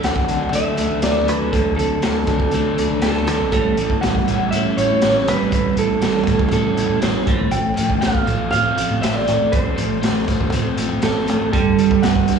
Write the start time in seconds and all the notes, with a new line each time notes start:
Already playing: D3
0.02 D2 D3 F#3 A3 F#5, snare, closed hi-hat
0.16 kick
0.28 D3 A3 D4, closed hi-hat
0.41 D2
0.52 D3 A3 E5, closed hi-hat
0.77 D2 D3 A3 D4, closed hi-hat
0.90 D3
1.02 D2 D3 A3 D5, snare, closed hi-hat
1.27 D3 F#3 A3 B4, closed hi-hat
1.41 D2
1.52 D2 D3 A3 A4, kick, closed hi-hat
1.76 D3 A3 A4, closed hi-hat
2.02 D2 D3 F#3 A3, snare, closed hi-hat
2.27 D3 A3 D4, kick, closed hi-hat
2.40 D2, kick
2.51 D3 A3, closed hi-hat
2.78 D2 D3 A3 D4, closed hi-hat
2.91 D3
3.02 D2 D3 A3 A4, snare, closed hi-hat
3.27 D3 F#3 A3, snare, closed hi-hat
3.40 B1
3.52 A1 A2 E3 G3 A4, kick, closed hi-hat
3.77 A2 E3, closed hi-hat
3.90 kick
4.01 A1 A2 E3 G3 F#5, snare, closed hi-hat
4.15 kick
4.27 A2 E3 E4, closed hi-hat
4.40 A1
4.51 A2 E3 C#4 E5, closed hi-hat
4.77 A1 A2 E3 E4 C#5, closed hi-hat
4.90 A2
5.01 A1 A2 E3 C#4, snare, closed hi-hat
5.28 A2 E3 G3 B4, snare, closed hi-hat
5.41 A1
5.52 A1 A2 E3, kick, closed hi-hat
5.77 A2 E3 A4, closed hi-hat
6.01 A1 A2 E3 G3, snare, closed hi-hat
6.27 A2 E3 E4, kick, closed hi-hat
6.39 A1, kick
6.51 A2 E3 C#4 A4, closed hi-hat
6.76 A1 A2 E3 E4, closed hi-hat
6.89 A2
7.02 A1 A2 E3 C#4 C5, snare, closed hi-hat
7.27 A1 A2 F3 A3, kick, closed hi-hat
7.40 A1
7.51 A1 A2 F3 G5, closed hi-hat
7.76 A2 F3, closed hi-hat
7.90 kick
8.01 A1 A2 F3 A3 F5, snare, closed hi-hat
8.15 kick
8.26 A2 F3 F4, closed hi-hat
8.41 A1
8.51 A2 F3 C4 F5, closed hi-hat
8.76 A1 A2 F3 F4, closed hi-hat
8.91 A2
9.01 A1 A2 F3 C4 E5, snare, closed hi-hat
9.15 D5
9.27 A2 F3 A3, closed hi-hat
9.41 A1
9.52 A1 A2 F3 C5, kick, closed hi-hat
9.76 A2 F3, closed hi-hat
10.02 A1 A2 F3 A3, snare, closed hi-hat
10.27 A2 F3 F4, kick, closed hi-hat
10.41 A1, kick
10.52 A2 F3 C4, closed hi-hat
10.77 A1 A2 F3 F4, closed hi-hat
10.92 A2
11.02 A1 A2 F3 C4 A4, snare, closed hi-hat
11.27 A2 F3 A3, closed hi-hat
11.41 A1
11.52 G1 G2 D3 G3 A4, kick, closed hi-hat
11.77 G2 D3 G3, closed hi-hat
11.91 kick
12.03 G1 G2 D3 B3 F#5, snare, closed hi-hat
12.16 kick
12.28 G2 D3 F#4, closed hi-hat